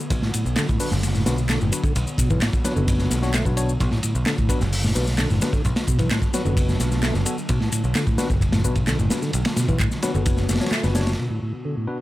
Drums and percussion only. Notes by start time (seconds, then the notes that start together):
0.10 kick, ride, shaker
0.22 snare
0.34 ride, shaker
0.46 shaker
0.56 snare, clap, ride, shaker
0.69 kick, shaker
0.80 open hi-hat, shaker
0.91 snare, shaker
1.03 snare, ride, shaker
1.15 snare, shaker
1.26 snare, ride, shaker
1.38 shaker
1.49 snare, clap, ride, shaker
1.61 shaker
1.72 ride, shaker
1.84 kick, shaker
1.96 ride, shaker
2.07 shaker
2.18 kick, ride, shaker
2.30 kick, shaker
2.42 snare, clap, ride, shaker
2.53 kick, shaker
2.65 snare, ride, shaker
2.76 shaker
2.88 kick, ride, shaker
2.98 snare, shaker
3.10 snare, ride, shaker
3.22 snare, shaker
3.34 snare, clap, ride, shaker
3.45 kick, shaker
3.57 ride, shaker
3.69 shaker
3.80 kick, ride, shaker
3.91 snare
4.03 ride, shaker
4.15 shaker
4.26 snare, clap, ride, shaker
4.38 kick, shaker
4.49 kick, ride, shaker
4.61 snare, shaker
4.73 open hi-hat, shaker
4.84 snare, shaker
4.96 snare, ride, shaker
5.07 snare, shaker
5.18 snare, clap, ride, shaker
5.30 shaker
5.42 snare, ride, shaker
5.53 kick, shaker
5.65 kick, ride, shaker
5.76 snare, ride, shaker
5.88 kick, shaker
5.99 kick, ride, shaker
6.11 snare, clap, ride, shaker
6.22 kick, shaker
6.34 snare, ride, shaker
6.46 shaker
6.57 kick, ride, shaker
6.69 snare, shaker
6.80 snare, ride, shaker
6.92 snare, shaker
7.03 snare, clap, ride, shaker
7.14 snare, shaker
7.26 ride, shaker
7.38 shaker
7.49 kick, ride, shaker
7.61 snare
7.72 ride, shaker
7.84 shaker
7.95 snare, clap, ride, shaker
8.07 kick, shaker
8.18 snare, ride, shaker
8.30 kick, shaker
8.41 kick, ride, shaker
8.52 snare, ride, shaker
8.64 kick, shaker
8.75 kick, ride, shaker
8.87 snare, clap, ride, shaker
8.99 shaker
9.10 snare, ride, shaker
9.22 snare, shaker
9.33 ride, shaker
9.45 snare, ride, shaker
9.56 snare, ride, shaker
9.68 kick, shaker
9.80 kick, clap, ride, shaker
9.91 snare, shaker
10.02 snare, ride, shaker
10.15 shaker
10.26 kick, ride, shaker
10.37 snare, shaker
10.49 snare, ride, shaker
10.55 snare, ride
10.61 snare, ride, shaker
10.66 snare, ride
10.71 snare, clap, ride, shaker
10.84 snare, shaker
10.95 snare, ride, shaker
11.01 snare, ride
11.07 snare, ride, shaker
11.12 snare, ride